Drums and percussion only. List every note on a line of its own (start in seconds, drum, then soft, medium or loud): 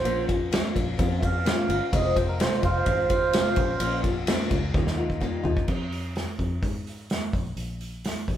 0.05 ride medium
0.29 kick medium
0.29 ride medium
0.52 snare loud
0.52 ride medium
0.76 kick medium
0.76 ride medium
0.99 kick loud
0.99 ride medium
1.23 kick medium
1.23 ride medium
1.46 snare loud
1.46 ride medium
1.70 ride medium
1.93 kick loud
1.93 ride medium
2.16 kick medium
2.16 ride medium
2.40 snare loud
2.40 ride medium
2.52 snare soft
2.63 kick medium
2.63 ride medium
2.86 kick loud
2.86 ride medium
3.10 kick medium
3.10 ride medium
3.33 snare loud
3.33 ride loud
3.56 kick loud
3.56 ride medium
3.80 ride loud
4.04 kick medium
4.04 ride medium
4.27 snare loud
4.27 ride loud
4.40 snare soft
4.51 kick medium
4.51 ride medium
4.74 kick loud
4.74 high tom medium
4.87 snare medium
5.10 kick medium
5.22 kick medium
5.45 floor tom loud
5.57 kick medium
5.68 kick medium
5.68 crash medium
5.92 open hi-hat soft
6.16 snare medium
6.16 open hi-hat soft
6.39 kick medium
6.39 open hi-hat soft
6.63 kick medium
6.63 open hi-hat medium
6.87 open hi-hat soft
7.10 snare loud
7.10 open hi-hat medium
7.33 kick medium
7.33 open hi-hat soft
7.57 open hi-hat medium
7.81 open hi-hat soft
8.04 snare medium
8.04 open hi-hat medium
8.28 kick medium
8.28 open hi-hat soft